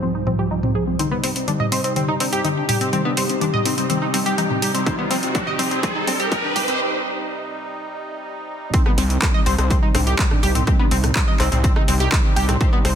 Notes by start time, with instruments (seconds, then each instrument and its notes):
Already playing: analog synth pad C2 G#2 F3 G3, ambient pad C3 D#4 C5 G#5
0.03 soft synth lead F3, synth arpeggio sound C4
0.15 synth arpeggio sound D#4
0.27 soft synth lead F3, synth arpeggio sound C4, mid tom
0.39 soft synth lead F3, synth arpeggio sound G4
0.51 soft synth lead F3, synth arpeggio sound D#4
0.63 soft synth lead C4, mid tom
0.75 soft synth lead F3, synth arpeggio sound G#4
0.87 soft synth lead F3, synth arpeggio sound C4
0.99 analog synth pad C3 G3 D#4, synth arpeggio sound C4, soft synth lead D#4, closed hi-hat, mid tom, riser
1.11 soft synth lead G3, synth arpeggio sound B3
1.24 soft synth lead G3, synth arpeggio sound C4, open hi-hat
1.32 ambient pad G4
1.36 soft synth lead C4, closed hi-hat
1.48 soft synth lead G3, synth arpeggio sound D4, closed hi-hat, mid tom
1.60 soft synth lead G3, synth arpeggio sound D#5, mid tom
1.72 soft synth lead G3, synth arpeggio sound C4, open hi-hat
1.84 synth arpeggio sound C4, closed hi-hat
1.96 soft synth lead G3, synth arpeggio sound C4, closed hi-hat, mid tom
2.08 soft synth lead G3, synth arpeggio sound D#4
2.20 synth arpeggio sound C4, soft synth lead D4, open hi-hat
2.33 soft synth lead G3, synth arpeggio sound G4, closed hi-hat
2.44 soft synth lead G3, synth arpeggio sound D#4, closed hi-hat, mid tom
2.57 soft synth lead D4
2.69 soft synth lead G3, synth arpeggio sound G4, mid tom, open hi-hat
2.81 synth arpeggio sound C4, closed hi-hat
2.93 soft synth lead G3, synth arpeggio sound C4, closed hi-hat, mid tom
3.05 synth arpeggio sound B3, soft synth lead D4
3.17 soft synth lead G3, synth arpeggio sound C4, open hi-hat
3.29 soft synth lead C4, closed hi-hat
3.41 soft synth lead G3, synth arpeggio sound D4, closed hi-hat, mid tom
3.53 soft synth lead G3, synth arpeggio sound D#5, mid tom
3.65 synth arpeggio sound C4, soft synth lead D#4, open hi-hat
3.78 soft synth lead G3, synth arpeggio sound C4, closed hi-hat
3.90 soft synth lead G3, synth arpeggio sound C4, closed hi-hat, mid tom
4.02 synth arpeggio sound D#4
4.14 soft synth lead G3, synth arpeggio sound C4, open hi-hat
4.26 soft synth lead G3, synth arpeggio sound G4, closed hi-hat
4.38 soft synth lead G3, synth arpeggio sound D#4, closed hi-hat, mid tom
4.50 soft synth lead C4, mid tom
4.62 soft synth lead G3, synth arpeggio sound G4, open hi-hat
4.74 soft synth lead G3, synth arpeggio sound C4, closed hi-hat
4.86 synth arpeggio sound C4, soft synth lead D#4, kick, closed hi-hat, mid tom
4.99 soft synth lead G3, synth arpeggio sound B3
5.11 soft synth lead G3, synth arpeggio sound C4, open hi-hat, mid tom
5.23 soft synth lead C4, closed hi-hat
5.35 soft synth lead G3, synth arpeggio sound D4, kick, closed hi-hat, mid tom
5.47 soft synth lead G3, synth arpeggio sound D#5, mid tom
5.59 soft synth lead G3, synth arpeggio sound C4, open hi-hat, mid tom
5.71 synth arpeggio sound C4, closed hi-hat
5.83 soft synth lead G3, synth arpeggio sound C4, kick, closed hi-hat, mid tom
5.95 soft synth lead G3, synth arpeggio sound D#4
6.07 synth arpeggio sound C4, soft synth lead D4, open hi-hat, mid tom
6.20 soft synth lead G3, synth arpeggio sound G4, closed hi-hat
6.32 soft synth lead G3, synth arpeggio sound D#4, kick, closed hi-hat, mid tom
6.44 soft synth lead D4
6.56 soft synth lead G3, synth arpeggio sound G4, mid tom, open hi-hat
6.68 synth arpeggio sound C4, closed hi-hat
8.74 analog synth pad C3 G3 D#4, synth arpeggio sound C4, soft synth lead D#4, kick, closed hi-hat
8.86 soft synth lead G3, synth arpeggio sound B3, cross-stick
8.98 analog synth bass C2, soft synth lead G3, synth arpeggio sound C4, open hi-hat
9.10 soft synth lead C4, closed hi-hat
9.22 soft synth lead G3, synth arpeggio sound D4, kick, cross-stick, clap, closed hi-hat
9.34 soft synth lead G3, synth arpeggio sound D#5
9.46 analog synth bass C2, soft synth lead G3, synth arpeggio sound C4, open hi-hat
9.58 analog synth bass C2, synth arpeggio sound C4, cross-stick, closed hi-hat
9.70 soft synth lead G3, synth arpeggio sound C4, kick, closed hi-hat
9.83 soft synth lead G3, synth arpeggio sound D#4
9.95 analog synth bass C2, synth arpeggio sound C4, soft synth lead D4, cross-stick, mid tom, open hi-hat
10.07 soft synth lead G3, synth arpeggio sound G4, closed hi-hat
10.19 soft synth lead G3, synth arpeggio sound D#4, kick, clap, closed hi-hat
10.31 soft synth lead D4, cross-stick, mid tom
10.43 analog synth bass C2, soft synth lead G3, synth arpeggio sound G4, open hi-hat
10.55 synth arpeggio sound C4, closed hi-hat, mid tom
10.67 soft synth lead G3, synth arpeggio sound C4, kick, cross-stick, closed hi-hat
10.79 synth arpeggio sound B3, soft synth lead D4
10.91 analog synth bass C2, soft synth lead G3, synth arpeggio sound C4, open hi-hat
11.04 soft synth lead C4, cross-stick, closed hi-hat, mid tom
11.16 soft synth lead G3, synth arpeggio sound D4, kick, clap, closed hi-hat
11.28 soft synth lead G3, synth arpeggio sound D#5
11.40 analog synth bass C2, synth arpeggio sound C4, soft synth lead D#4, cross-stick, clap, open hi-hat
11.52 analog synth bass C2, soft synth lead G3, synth arpeggio sound C4, closed hi-hat, mid tom
11.64 soft synth lead G3, synth arpeggio sound C4, kick, closed hi-hat
11.76 synth arpeggio sound D#4, cross-stick
11.88 analog synth bass C2, soft synth lead G3, synth arpeggio sound C4, open hi-hat
12.00 soft synth lead G3, synth arpeggio sound G4, closed hi-hat
12.12 soft synth lead G3, synth arpeggio sound D#4, kick, cross-stick, clap, closed hi-hat
12.24 soft synth lead C4
12.36 analog synth bass C2, soft synth lead G3, synth arpeggio sound G4, open hi-hat
12.49 soft synth lead G3, synth arpeggio sound C4, cross-stick, closed hi-hat, mid tom
12.61 synth arpeggio sound C4, soft synth lead D#4, kick, closed hi-hat
12.73 soft synth lead G3, synth arpeggio sound B3
12.85 analog synth bass C2, soft synth lead G3, synth arpeggio sound C4, cross-stick, open hi-hat